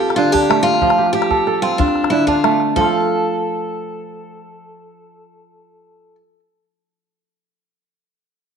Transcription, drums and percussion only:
0.10 calabash click
0.34 calabash thump
0.43 calabash click
0.51 calabash click
0.74 calabash click
0.81 calabash thump, calabash click
0.90 calabash click
0.98 calabash click
1.06 calabash click
1.22 calabash click
1.31 calabash thump
1.47 calabash click
1.72 calabash click
1.80 calabash thump
1.88 calabash click
1.96 calabash click
2.04 calabash click
2.20 calabash click
2.27 calabash thump
2.36 calabash click
2.44 calabash click
2.60 calabash click
2.76 calabash thump

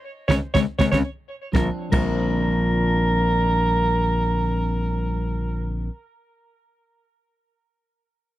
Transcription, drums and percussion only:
0.29 kick, snare, low conga
0.54 kick, snare, low conga
0.79 kick, snare, low conga
0.92 kick, snare, low conga
1.53 kick, snare, high conga
1.92 kick, crash, high conga

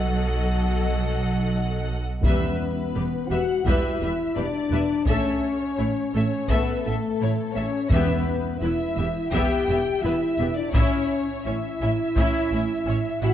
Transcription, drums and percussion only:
2.23 taiko
3.66 taiko
5.07 taiko
6.49 taiko
7.90 taiko
9.33 taiko
10.74 taiko
12.16 taiko

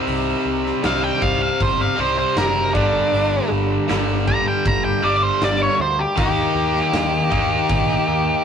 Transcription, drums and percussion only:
0.07 open hi-hat
0.66 snare
0.83 snare, open hi-hat
1.22 kick, snare
1.60 kick, open hi-hat
2.36 snare, open hi-hat
2.75 kick
3.14 open hi-hat
3.89 snare, open hi-hat
4.28 kick
4.64 kick, open hi-hat
5.41 snare, open hi-hat
6.17 kick, open hi-hat
6.75 snare
6.93 snare, open hi-hat
7.32 kick
7.69 kick, open hi-hat

